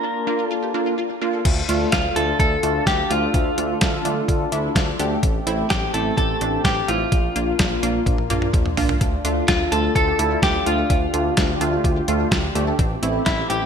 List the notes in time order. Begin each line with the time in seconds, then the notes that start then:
Already playing: A#3 D4 F4 A#4
0.03 D4
0.27 A#3 D4 F4
0.39 F4
0.45 A4
0.51 F4
0.62 G4
0.74 A#3 D4 F4 A4
0.86 F4
0.98 F4
1.10 D4
1.21 A#3 D4 F4
1.33 A4
1.45 D2 D3 D4 F4 A4, kick, closed hi-hat, crash
1.69 D2 A3 D4 F4, closed hi-hat
1.92 D2 F4, kick, snare, closed hi-hat
2.16 D2 A3 D4 F4 A4, closed hi-hat
2.39 D2 A4, kick, closed hi-hat
2.63 D2 A3 D4 F4, closed hi-hat
2.87 D2 G4, kick, snare, closed hi-hat
3.10 D2 A3 D4 F4, closed hi-hat
3.34 D2, kick, closed hi-hat
3.58 D2 A3 D4 F4, closed hi-hat
3.81 D2, kick, snare, closed hi-hat
4.05 D2 A3 D4 F4, closed hi-hat
4.28 D2, kick, closed hi-hat
4.52 D2 A3 D4 E4, closed hi-hat
4.76 D2, kick, snare, closed hi-hat
4.99 D2 A3 D4 G4, closed hi-hat
5.23 A1 A3 C4 G4, kick, closed hi-hat
5.47 A1 A3 C4 E4, closed hi-hat
5.70 A1 G4, kick, snare, closed hi-hat
5.94 A1 A3 C4 E4 A4, closed hi-hat
6.17 A1 A4, kick, closed hi-hat
6.41 A1 A3 C4 D4, closed hi-hat
6.64 A1 G4, kick, snare, closed hi-hat
6.88 A1 A3 C4 E4 F4, closed hi-hat
7.12 A#1 A#3 D4 F4, kick, closed hi-hat
7.36 A#1 A#3 D4 F4, closed hi-hat
7.59 A#1, kick, snare, closed hi-hat
7.83 A#1 A#3 D4 F4, closed hi-hat
8.06 A#1, kick, closed hi-hat, high tom
8.18 high tom
8.30 A#1 A#3 D4 F4, closed hi-hat, mid tom
8.42 mid tom
8.53 A#1, kick, closed hi-hat, mid tom
8.66 mid tom
8.77 A#1 A#3 D4 F4, floor tom, open hi-hat
8.89 floor tom
9.01 D2 D3 D4 A4, kick, closed hi-hat
9.25 D2 A3 D4 F4, closed hi-hat
9.48 D2 D4 F4, kick, snare, closed hi-hat
9.72 D2 A3 D4 F4 A4, closed hi-hat
9.84 F4
9.95 D2 F4 A4, kick, closed hi-hat
10.07 G4
10.19 D2 A3 D4 E4 A4, closed hi-hat
10.31 F4
10.42 D2 F4 G4, kick, snare, closed hi-hat
10.55 D4
10.66 D2 A3 D4 F4, closed hi-hat
10.78 A4
10.90 D2 D4 G4, kick, closed hi-hat
11.14 D2 A3 D4 F4, closed hi-hat
11.37 D2 D4, kick, snare, closed hi-hat
11.61 D2 A3 D4 F4, closed hi-hat
11.73 F4
11.84 D2 F4, kick, closed hi-hat
11.96 G4
12.08 D2 A3 D4 F4 A4, closed hi-hat
12.20 F4
12.31 D2 F4, kick, snare, closed hi-hat
12.44 D4
12.55 D2 A3 D4 F4 G4, closed hi-hat
12.67 A4
12.79 A1 A3 C4 G4, kick, closed hi-hat
13.03 A1 A3 C4 E4, closed hi-hat
13.26 A1 C4 E4, kick, snare, closed hi-hat
13.50 A1 A3 C4 E4 G4, closed hi-hat
13.62 E4